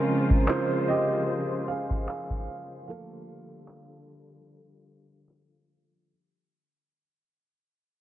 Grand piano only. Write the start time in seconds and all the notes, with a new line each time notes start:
Already playing: C#3 G#3 C4 C#4 A#4
0.48 F4 C5
0.88 G4 D#5
1.68 G#4 F5
2.08 G#4 F5
2.88 F3 A3 A#3 A4 F5